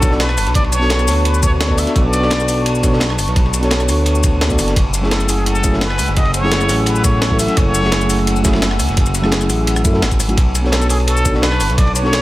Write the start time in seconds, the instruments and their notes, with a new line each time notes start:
Already playing: analog synth bass B1, analog synth pad D4 B4 A5 C#6, muted trumpet A4, impact
0.01 tine electric piano B3 D4 F#4 A4 C#5, kick, closed hi-hat, ride, shaker
0.10 tine electric piano B3 D4 F#4 A4 D5, snare
0.20 muted trumpet B4, snare, closed hi-hat, ride
0.29 cross-stick, snare
0.38 analog synth bass F#1, cross-stick, open hi-hat, ride, shaker
0.47 analog synth bass B1, snare, closed hi-hat
0.54 muted trumpet D5, kick, closed hi-hat, ride
0.64 ride
0.72 muted trumpet C#5, closed hi-hat, ride, shaker
0.79 tine electric piano B3 D4 F#4 A4, snare
0.84 tine electric piano C#5
0.90 snare, closed hi-hat, ride
0.99 cross-stick, shaker
1.08 analog synth bass D2, snare, open hi-hat, ride, shaker
1.25 muted trumpet B4, closed hi-hat, ride
1.34 shaker
1.43 muted trumpet C#5, kick, closed hi-hat, ride, shaker
1.60 muted trumpet C#5, snare, closed hi-hat, ride
1.67 tine electric piano B3 D4 F#4 A4, kick, snare
1.72 tine electric piano D5
1.77 muted trumpet E5, cross-stick, open hi-hat, ride, shaker
1.87 snare, closed hi-hat
1.96 analog synth bass B1, muted trumpet D5, kick, closed hi-hat, ride
2.13 closed hi-hat, ride, shaker
2.20 tine electric piano B3 D4 F#4 A4, snare
2.25 tine electric piano D5
2.30 snare, closed hi-hat, ride
2.40 shaker
2.48 open hi-hat, ride, shaker
2.58 ride
2.66 closed hi-hat, ride
2.75 shaker
2.82 tine electric piano B3 D4 F#4 A4 C#5, kick, closed hi-hat, ride, shaker
2.91 tine electric piano B3 D4 F#4 A4 D5, snare
3.00 snare, closed hi-hat, ride
3.10 cross-stick, snare
3.18 analog synth bass F#1, cross-stick, open hi-hat, ride, shaker
3.27 analog synth bass B1, snare, closed hi-hat
3.36 kick, closed hi-hat, ride
3.46 ride
3.54 closed hi-hat, ride, shaker
3.60 tine electric piano B3 D4 F#4 A4, snare, closed hi-hat
3.65 tine electric piano C#5
3.71 snare, closed hi-hat, ride
3.80 cross-stick, shaker
3.89 analog synth bass D2, open hi-hat, ride, shaker
4.06 closed hi-hat, ride
4.15 shaker
4.24 kick, closed hi-hat, ride, shaker
4.41 snare, closed hi-hat, ride
4.49 tine electric piano B3 D4 F#4 A4 D5, kick, snare, shaker
4.59 analog synth bass F#1, cross-stick, open hi-hat, ride, shaker
4.68 snare, closed hi-hat
4.76 analog synth bass F#1, analog synth pad A3 F#5 G#5 E6, kick, closed hi-hat, ride
4.94 closed hi-hat, ride, shaker
5.01 tine electric piano F#3 A3 C#4 E4, snare
5.05 tine electric piano G#4
5.11 muted trumpet A4, snare, closed hi-hat, ride
5.20 shaker
5.29 muted trumpet G#4, open hi-hat, ride, shaker
5.38 ride
5.46 muted trumpet A4, closed hi-hat, ride
5.55 shaker
5.63 tine electric piano F#3 A3 C#4 E4 G#4, kick, closed hi-hat, ride, shaker
5.72 tine electric piano F#3 A3 C#4 E4 A4, snare
5.81 muted trumpet B4, snare, closed hi-hat, ride
5.90 cross-stick, snare
5.98 analog synth bass C#2, cross-stick, open hi-hat, ride, shaker
6.08 analog synth bass F#1, snare, closed hi-hat
6.17 muted trumpet D#5, kick, closed hi-hat, ride
6.25 ride
6.34 muted trumpet C#5, closed hi-hat, ride, shaker
6.41 tine electric piano F#3 A3 C#4 E4, snare
6.46 tine electric piano G#4
6.51 snare, closed hi-hat, ride
6.61 cross-stick, shaker
6.69 analog synth bass A1, snare, open hi-hat, ride, shaker
6.86 muted trumpet B4, closed hi-hat, ride
6.96 shaker
7.04 muted trumpet C#5, kick, closed hi-hat, ride, shaker
7.22 muted trumpet C#5, snare, closed hi-hat, ride
7.29 tine electric piano F#3 A3 C#4 E4, kick, snare
7.33 tine electric piano A4
7.39 muted trumpet E5, cross-stick, open hi-hat, ride, shaker
7.48 snare, closed hi-hat
7.57 analog synth bass F#1, muted trumpet C#5, kick, closed hi-hat, ride
7.75 closed hi-hat, ride, shaker
7.81 tine electric piano F#3 A3 C#4 E4, snare
7.86 tine electric piano G#4
7.92 snare, closed hi-hat, ride
8.01 shaker
8.10 open hi-hat, ride, shaker
8.19 ride
8.27 closed hi-hat, ride
8.36 shaker
8.43 tine electric piano F#3 A3 C#4 E4 G#4, kick, snare, closed hi-hat, ride, shaker
8.52 tine electric piano F#3 A3 C#4 E4, snare, ride
8.62 snare, closed hi-hat, ride
8.71 cross-stick, snare
8.79 analog synth bass C#2, cross-stick, open hi-hat, ride, shaker
8.89 analog synth bass F#1, snare, closed hi-hat
8.97 kick, closed hi-hat, ride
9.06 ride, shaker
9.14 closed hi-hat, ride, shaker
9.22 tine electric piano F#3 A3 C#4 E4, cross-stick, snare
9.26 tine electric piano G#4
9.32 snare, closed hi-hat, ride
9.41 cross-stick, shaker
9.49 analog synth bass A1, open hi-hat, ride, shaker
9.67 closed hi-hat, ride
9.76 cross-stick, shaker
9.84 analog synth bass F#2, tine electric piano F#3 A3 C#4 E4 A4, kick, closed hi-hat, ride, shaker
9.93 tine electric piano F#3 A3 C#4 E4 A4, snare
10.02 analog synth bass G#1, snare, closed hi-hat, ride
10.11 kick, closed hi-hat, shaker
10.20 cross-stick, open hi-hat, ride, shaker
10.28 tine electric piano F#3 A3 C#4 E4 F#4, closed hi-hat, ride
10.37 analog synth bass B1, analog synth pad D4 B4 A5 C#6, kick, closed hi-hat, ride
10.55 closed hi-hat, ride, shaker
10.62 tine electric piano B3 D4 F#4 A4, snare
10.66 tine electric piano C#5
10.72 muted trumpet A4, snare, closed hi-hat, ride
10.82 shaker
10.89 muted trumpet G#4, open hi-hat, ride, shaker
11.00 ride
11.07 muted trumpet A4, closed hi-hat, ride
11.17 shaker
11.24 tine electric piano B3 D4 F#4 A4 C#5, kick, closed hi-hat, ride, shaker
11.33 tine electric piano B3 D4 F#4 A4 D5, snare
11.42 muted trumpet B4, snare, closed hi-hat, ride
11.52 cross-stick, snare
11.60 analog synth bass F#1, cross-stick, open hi-hat, ride, shaker
11.69 analog synth bass B1, snare, closed hi-hat
11.77 muted trumpet D5, kick, closed hi-hat, ride
11.87 ride
11.95 muted trumpet C#5, closed hi-hat, ride, shaker
12.02 tine electric piano B3 D4 F#4 A4, snare
12.07 tine electric piano C#5
12.13 snare, closed hi-hat, ride